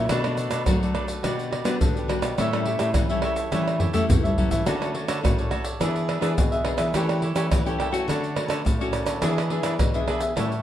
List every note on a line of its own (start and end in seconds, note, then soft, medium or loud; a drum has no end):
0.09 0.47 B2 loud
0.09 0.65 B2 medium
0.09 0.20 A3 medium
0.09 0.36 D4 medium
0.09 0.21 D4 medium
0.09 0.21 F#4 medium
0.09 0.37 A4 medium
0.09 0.38 B4 medium
0.09 0.38 D5 medium
0.09 pandeiro medium
0.09 tamborim medium
0.09 shaker medium
0.09 surdo medium
0.24 0.64 A3 medium
0.24 0.64 D4 medium
0.24 0.64 F#4 medium
0.24 pandeiro soft
0.24 tamborim medium
0.24 shaker soft
0.37 0.50 D4 soft
0.37 0.51 A4 soft
0.37 0.51 B4 medium
0.37 0.51 D5 medium
0.37 pandeiro medium
0.37 shaker medium
0.51 0.65 B2 medium
0.51 0.61 D4 medium
0.51 0.62 A4 medium
0.51 0.62 B4 medium
0.51 0.62 D5 medium
0.51 pandeiro medium
0.51 tamborim medium
0.51 shaker medium
0.66 0.92 F#3 medium
0.66 1.22 F#3 medium
0.66 1.20 A3 medium
0.66 1.20 D4 medium
0.66 1.20 F#4 medium
0.66 pandeiro medium
0.66 tamborim medium
0.66 shaker medium
0.66 surdo loud
0.82 0.94 A4 soft
0.82 0.94 B4 soft
0.82 0.95 D5 soft
0.82 pandeiro soft
0.82 shaker soft
0.94 1.08 D4 medium
0.94 1.09 A4 medium
0.94 1.07 B4 medium
0.94 1.06 D5 medium
0.94 pandeiro medium
0.94 tamborim medium
1.08 1.23 A4 soft
1.08 1.23 B4 soft
1.08 1.22 D5 soft
1.08 pandeiro medium
1.08 shaker medium
1.23 1.78 B2 medium
1.23 1.61 B2 medium
1.23 1.62 G3 medium
1.23 1.63 D4 medium
1.23 1.50 F#4 medium
1.23 1.63 F#4 medium
1.23 1.50 G4 medium
1.23 1.51 B4 medium
1.23 1.52 D5 medium
1.23 pandeiro medium
1.23 tamborim medium
1.23 shaker medium
1.23 surdo medium
1.39 pandeiro soft
1.39 shaker soft
1.51 1.64 F#4 soft
1.51 1.64 G4 medium
1.51 1.64 B4 medium
1.51 1.65 D5 medium
1.51 pandeiro medium
1.51 tamborim medium
1.64 2.04 G3 medium
1.64 1.78 B3 loud
1.64 2.04 D4 medium
1.64 1.75 F#4 medium
1.64 2.05 F#4 medium
1.64 1.75 G4 medium
1.64 1.75 B4 medium
1.64 1.76 D5 medium
1.64 pandeiro medium
1.64 tamborim medium
1.64 shaker medium
1.80 2.35 B2 medium
1.80 2.17 D3 medium
1.80 pandeiro medium
1.80 shaker medium
1.80 surdo loud
1.95 2.24 G4 soft
1.95 2.23 B4 soft
1.95 2.21 D5 soft
1.95 pandeiro soft
1.95 shaker soft
2.08 2.26 G3 medium
2.08 2.26 D4 medium
2.08 2.26 F#4 medium
2.08 pandeiro medium
2.08 tamborim medium
2.22 2.35 B2 medium
2.22 2.37 G4 soft
2.22 2.37 B4 soft
2.22 2.37 D5 soft
2.22 pandeiro medium
2.22 tamborim medium
2.22 shaker medium
2.37 2.92 A2 medium
2.37 2.74 A2 loud
2.37 2.48 G3 medium
2.37 2.48 C#4 medium
2.37 2.48 E4 medium
2.37 2.65 G4 medium
2.37 2.65 A4 medium
2.37 2.66 C#5 medium
2.37 2.66 E5 medium
2.37 pandeiro medium
2.37 tamborim medium
2.37 shaker medium
2.37 surdo medium
2.53 2.91 G3 medium
2.53 2.91 C#4 medium
2.53 2.92 E4 medium
2.53 pandeiro soft
2.53 tamborim medium
2.53 shaker soft
2.65 2.78 G4 medium
2.65 2.79 A4 soft
2.65 2.79 C#5 medium
2.65 2.79 E5 medium
2.65 pandeiro medium
2.79 2.93 A2 medium
2.79 2.89 G4 medium
2.79 2.89 A4 medium
2.79 2.90 C#5 medium
2.79 2.90 E5 medium
2.79 pandeiro medium
2.79 tamborim medium
2.79 shaker medium
2.94 3.49 E3 medium
2.94 3.20 E3 medium
2.94 3.05 G3 medium
2.94 3.05 C#4 medium
2.94 3.05 E4 medium
2.94 pandeiro medium
2.94 tamborim medium
2.94 shaker medium
2.94 surdo loud
3.09 3.48 G3 medium
3.09 3.48 C#4 medium
3.09 3.48 E4 medium
3.09 3.23 A4 soft
3.09 3.23 C#5 soft
3.09 3.23 E5 soft
3.09 pandeiro soft
3.09 shaker soft
3.22 3.37 G4 medium
3.22 3.37 A4 medium
3.22 3.37 C#5 medium
3.22 3.35 E5 medium
3.22 pandeiro medium
3.22 tamborim medium
3.36 3.51 A4 soft
3.36 3.51 C#5 soft
3.36 3.50 E5 soft
3.36 pandeiro medium
3.36 shaker medium
3.52 4.06 A2 medium
3.52 3.89 E3 medium
3.52 3.90 G3 medium
3.52 3.91 C#4 medium
3.52 3.91 E4 medium
3.52 3.79 G4 medium
3.52 3.79 A4 medium
3.52 3.80 C#5 medium
3.52 3.81 E5 medium
3.52 pandeiro medium
3.52 tamborim medium
3.52 shaker medium
3.52 surdo medium
3.68 pandeiro soft
3.68 tamborim medium
3.68 shaker soft
3.80 3.92 G4 medium
3.80 3.92 A4 medium
3.80 3.93 C#5 medium
3.80 3.93 E5 medium
3.80 surdo medium
3.80 pandeiro medium
3.93 4.33 G3 medium
3.93 4.07 A3 loud
3.93 4.33 C#4 medium
3.93 4.33 E4 medium
3.93 4.03 G4 medium
3.93 4.03 A4 medium
3.93 4.03 C#5 medium
3.93 4.04 E5 medium
3.93 surdo medium
3.93 pandeiro medium
3.93 shaker medium
4.09 4.63 E3 medium
4.09 4.23 A3 medium
4.09 surdo loud
4.09 pandeiro medium
4.09 shaker medium
4.09 surdo loud
4.23 4.38 G3 medium
4.23 4.52 A4 soft
4.23 4.51 C#5 soft
4.23 4.49 E5 soft
4.23 pandeiro soft
4.23 shaker soft
4.38 4.51 F#3 medium
4.38 4.62 G3 medium
4.38 4.62 C#4 medium
4.38 4.62 E4 medium
4.38 pandeiro medium
4.38 surdo medium
4.51 4.65 E3 medium
4.51 4.66 A4 soft
4.51 4.65 C#5 soft
4.51 4.65 E5 soft
4.51 pandeiro medium
4.51 shaker medium
4.51 surdo medium
4.66 5.20 D3 medium
4.66 5.04 D3 medium
4.66 4.75 A3 medium
4.66 4.75 C#4 medium
4.66 4.93 F#4 medium
4.66 4.75 F#4 medium
4.66 4.94 A4 medium
4.66 4.94 C#5 medium
4.66 4.95 D5 medium
4.66 pandeiro medium
4.66 tamborim medium
4.66 shaker medium
4.66 surdo medium
4.81 5.19 A3 medium
4.81 5.19 C#4 medium
4.81 5.19 F#4 medium
4.81 pandeiro soft
4.81 tamborim medium
4.81 shaker soft
4.94 5.07 F#4 medium
4.94 5.07 A4 soft
4.94 5.08 C#5 medium
4.94 5.08 D5 medium
4.94 pandeiro medium
5.08 5.21 D3 loud
5.08 5.18 F#4 medium
5.08 5.18 A4 medium
5.08 5.18 C#5 medium
5.08 5.18 D5 medium
5.08 pandeiro medium
5.08 tamborim medium
5.08 shaker medium
5.23 5.77 A2 medium
5.23 5.48 A2 medium
5.23 5.60 A3 medium
5.23 5.60 C#4 medium
5.23 5.60 F#4 medium
5.23 pandeiro medium
5.23 tamborim medium
5.23 shaker medium
5.23 surdo loud
5.38 5.51 A4 soft
5.38 5.51 C#5 soft
5.38 5.51 D5 soft
5.38 pandeiro soft
5.38 shaker soft
5.51 5.64 F#4 medium
5.51 5.65 A4 medium
5.51 5.64 C#5 medium
5.51 5.63 D5 medium
5.51 pandeiro medium
5.51 tamborim medium
5.64 5.79 A4 soft
5.64 5.79 C#5 soft
5.64 5.78 D5 medium
5.64 pandeiro medium
5.64 shaker medium
5.80 6.34 E3 medium
5.80 6.17 E3 medium
5.80 6.18 B3 medium
5.80 6.18 D4 medium
5.80 6.07 D4 medium
5.80 6.19 G#4 medium
5.80 6.08 G#4 medium
5.80 6.08 B4 medium
5.80 6.09 E5 medium
5.80 pandeiro medium
5.80 tamborim medium
5.80 shaker medium
5.80 surdo medium
5.96 pandeiro soft
5.96 shaker soft
6.08 6.20 D4 medium
6.08 6.21 G#4 medium
6.08 6.21 B4 medium
6.08 6.22 E5 medium
6.08 pandeiro medium
6.08 tamborim medium
6.21 6.35 E3 loud
6.21 6.60 B3 medium
6.21 6.60 D4 medium
6.21 6.31 D4 medium
6.21 6.61 G#4 medium
6.21 6.32 G#4 medium
6.21 6.32 B4 medium
6.21 6.32 E5 medium
6.21 pandeiro medium
6.21 tamborim medium
6.21 shaker medium
6.37 6.91 B2 medium
6.37 6.74 B2 medium
6.37 pandeiro medium
6.37 shaker medium
6.37 surdo loud
6.51 6.79 G#4 soft
6.51 6.78 B4 soft
6.51 6.77 E5 medium
6.51 pandeiro soft
6.51 shaker soft
6.65 6.91 B3 medium
6.65 6.91 D4 medium
6.65 6.92 G#4 medium
6.65 pandeiro medium
6.65 tamborim medium
6.78 6.92 E3 medium
6.78 6.93 G#4 soft
6.78 6.93 B4 medium
6.78 6.92 E5 medium
6.78 pandeiro medium
6.78 tamborim medium
6.78 shaker medium
6.94 7.48 E3 medium
6.94 7.31 E3 loud
6.94 7.21 A3 medium
6.94 7.21 C#4 medium
6.94 7.21 G4 medium
6.94 7.22 G4 medium
6.94 7.22 A4 medium
6.94 7.22 C#5 medium
6.94 7.23 G5 medium
6.94 pandeiro medium
6.94 tamborim medium
6.94 shaker medium
6.94 surdo medium
7.09 pandeiro soft
7.09 tamborim medium
7.09 shaker soft
7.22 7.35 G4 medium
7.22 7.35 A4 medium
7.22 7.36 C#5 medium
7.22 7.36 G5 medium
7.22 pandeiro medium
7.35 7.48 E3 medium
7.35 7.60 A3 medium
7.35 7.60 C#4 medium
7.35 7.46 G4 medium
7.35 7.60 G4 medium
7.35 7.46 A4 medium
7.35 7.46 C#5 medium
7.35 7.46 G5 medium
7.35 pandeiro medium
7.35 tamborim medium
7.35 shaker medium
7.51 8.05 E3 medium
7.51 7.76 E3 medium
7.51 pandeiro medium
7.51 tamborim medium
7.51 shaker medium
7.51 surdo loud
7.65 7.89 A3 medium
7.65 7.90 C#4 medium
7.65 7.90 G4 medium
7.65 7.79 A4 soft
7.65 7.79 C#5 soft
7.65 7.79 G5 medium
7.65 pandeiro soft
7.65 shaker soft
7.78 7.92 G4 medium
7.78 7.93 A4 medium
7.78 7.92 C#5 medium
7.78 7.91 G5 medium
7.78 pandeiro medium
7.78 tamborim medium
7.91 8.31 A3 medium
7.91 8.31 C#4 medium
7.91 8.31 F#4 medium
7.91 8.07 A4 soft
7.91 8.07 C#5 soft
7.91 8.06 G5 medium
7.91 pandeiro medium
7.91 shaker medium
8.08 8.44 D3 loud
8.08 8.62 D3 medium
8.08 8.35 F#4 medium
8.08 8.36 A4 medium
8.08 8.36 C#5 medium
8.08 8.37 D5 medium
8.08 pandeiro medium
8.08 tamborim medium
8.08 shaker medium
8.08 surdo medium
8.24 pandeiro soft
8.24 shaker soft
8.35 8.74 A3 medium
8.35 8.74 C#4 medium
8.35 8.48 F#4 soft
8.35 8.75 F#4 medium
8.35 8.48 A4 soft
8.35 8.49 C#5 medium
8.35 8.49 D5 medium
8.35 pandeiro medium
8.35 tamborim medium
8.48 8.62 D3 loud
8.48 8.59 F#4 medium
8.48 8.59 A4 medium
8.48 8.60 C#5 medium
8.48 8.60 D5 medium
8.48 pandeiro medium
8.48 tamborim medium
8.48 shaker medium
8.65 9.19 A2 medium
8.65 9.01 A2 medium
8.65 pandeiro medium
8.65 shaker medium
8.65 surdo loud
8.79 9.18 A3 medium
8.79 9.19 C#4 medium
8.79 9.19 F#4 medium
8.79 9.07 A4 soft
8.79 9.06 C#5 soft
8.79 9.04 D5 medium
8.79 pandeiro soft
8.79 shaker soft
8.93 pandeiro medium
8.93 tamborim medium
8.93 shaker medium
9.06 9.19 D3 medium
9.06 9.21 A4 soft
9.06 9.21 C#5 medium
9.06 9.20 D5 medium
9.06 pandeiro medium
9.06 tamborim medium
9.06 shaker medium
9.21 9.59 E3 loud
9.21 9.77 E3 medium
9.21 9.40 B3 medium
9.21 9.48 D4 medium
9.21 9.40 D4 medium
9.21 9.49 G#4 medium
9.21 9.40 G#4 medium
9.21 9.50 B4 medium
9.21 9.50 E5 medium
9.21 pandeiro medium
9.21 tamborim medium
9.21 shaker medium
9.21 surdo medium
9.38 pandeiro soft
9.38 tamborim medium
9.38 shaker soft
9.49 9.89 B3 medium
9.49 9.62 D4 medium
9.49 9.89 D4 medium
9.49 9.62 G#4 medium
9.49 9.89 G#4 medium
9.49 9.63 B4 soft
9.49 9.63 E5 soft
9.49 pandeiro medium
9.63 9.76 E3 medium
9.63 9.73 D4 medium
9.63 9.73 G#4 medium
9.63 9.73 B4 medium
9.63 9.74 E5 medium
9.63 pandeiro medium
9.63 tamborim medium
9.63 shaker medium
9.79 10.33 B2 medium
9.79 10.04 B2 medium
9.79 pandeiro medium
9.79 tamborim medium
9.79 shaker medium
9.79 surdo loud
9.94 10.32 B3 medium
9.94 10.32 D4 medium
9.94 10.32 G#4 medium
9.94 10.07 G#4 soft
9.94 10.08 B4 soft
9.94 10.07 E5 soft
9.94 pandeiro soft
9.94 shaker soft
10.07 10.21 D4 medium
10.07 10.21 G#4 medium
10.07 10.21 B4 medium
10.07 10.20 E5 medium
10.07 pandeiro medium
10.07 tamborim medium
10.21 10.36 G#4 soft
10.21 10.35 B4 soft
10.21 10.35 E5 medium
10.21 pandeiro medium
10.21 shaker medium
10.35 10.62 A2 medium
10.35 10.53 G3 medium
10.35 10.53 C#4 medium
10.35 10.53 E4 medium
10.35 10.62 G4 medium
10.35 10.62 A4 medium
10.35 10.62 C#5 medium
10.35 10.62 E5 medium
10.35 pandeiro medium
10.35 tamborim medium
10.35 shaker medium
10.35 surdo medium
10.52 pandeiro soft
10.52 shaker soft